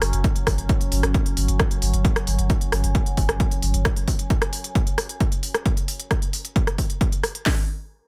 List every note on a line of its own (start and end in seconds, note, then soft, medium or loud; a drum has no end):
0.00 0.13 F#1 loud
0.00 3.90 F#3 medium
0.00 3.90 C#4 medium
0.00 cross-stick medium
0.00 open hi-hat loud
0.13 0.24 F#1 medium
0.13 closed hi-hat medium
0.24 kick loud
0.24 closed hi-hat medium
0.36 closed hi-hat medium
0.47 0.58 G1 loud
0.47 kick medium
0.47 cross-stick medium
0.47 open hi-hat loud
0.58 0.69 G1 medium
0.58 closed hi-hat medium
0.69 kick loud
0.69 closed hi-hat medium
0.81 closed hi-hat medium
0.92 1.03 G1 loud
0.92 open hi-hat loud
1.03 1.14 G1 medium
1.03 cross-stick medium
1.03 closed hi-hat medium
1.14 kick loud
1.14 closed hi-hat medium
1.26 closed hi-hat medium
1.37 1.48 G1 loud
1.37 open hi-hat loud
1.48 1.59 G1 medium
1.48 closed hi-hat medium
1.60 kick loud
1.60 cross-stick medium
1.60 closed hi-hat medium
1.71 closed hi-hat medium
1.82 1.93 G1 loud
1.82 open hi-hat loud
1.94 2.04 G1 medium
1.94 closed hi-hat medium
2.05 kick loud
2.05 closed hi-hat medium
2.16 cross-stick medium
2.16 closed hi-hat medium
2.27 2.38 G1 loud
2.27 open hi-hat medium
2.39 2.49 G1 medium
2.39 closed hi-hat medium
2.50 kick loud
2.50 closed hi-hat medium
2.61 closed hi-hat medium
2.72 2.83 G1 loud
2.72 cross-stick medium
2.72 open hi-hat loud
2.84 2.95 G1 medium
2.84 closed hi-hat medium
2.95 kick loud
2.95 closed hi-hat medium
3.06 closed hi-hat medium
3.17 3.28 G1 loud
3.17 kick medium
3.17 open hi-hat loud
3.29 3.40 G1 medium
3.29 cross-stick medium
3.29 closed hi-hat medium
3.40 kick loud
3.40 closed hi-hat medium
3.51 closed hi-hat medium
3.62 3.73 G1 loud
3.62 open hi-hat loud
3.74 3.85 G1 medium
3.74 closed hi-hat medium
3.85 kick loud
3.85 cross-stick medium
3.85 closed hi-hat medium
3.96 closed hi-hat medium
4.08 kick medium
4.08 open hi-hat loud
4.19 closed hi-hat medium
4.30 kick loud
4.30 closed hi-hat medium
4.42 cross-stick medium
4.42 closed hi-hat medium
4.53 open hi-hat loud
4.64 closed hi-hat medium
4.75 kick loud
4.75 closed hi-hat medium
4.87 closed hi-hat medium
4.98 cross-stick medium
4.98 open hi-hat loud
5.09 closed hi-hat medium
5.20 kick loud
5.20 closed hi-hat medium
5.32 closed hi-hat medium
5.43 open hi-hat medium
5.54 cross-stick medium
5.54 closed hi-hat medium
5.66 kick loud
5.66 closed hi-hat medium
5.77 closed hi-hat medium
5.88 open hi-hat medium
6.00 closed hi-hat medium
6.11 kick loud
6.11 cross-stick medium
6.11 closed hi-hat medium
6.22 closed hi-hat medium
6.33 open hi-hat loud
6.45 closed hi-hat medium
6.56 kick loud
6.56 closed hi-hat medium
6.67 cross-stick medium
6.67 closed hi-hat medium
6.78 kick medium
6.78 open hi-hat loud
6.90 closed hi-hat medium
7.01 kick loud
7.01 closed hi-hat medium
7.12 closed hi-hat medium
7.23 cross-stick medium
7.23 open hi-hat loud
7.35 closed hi-hat medium
7.46 kick loud
7.46 snare loud
7.46 open hi-hat medium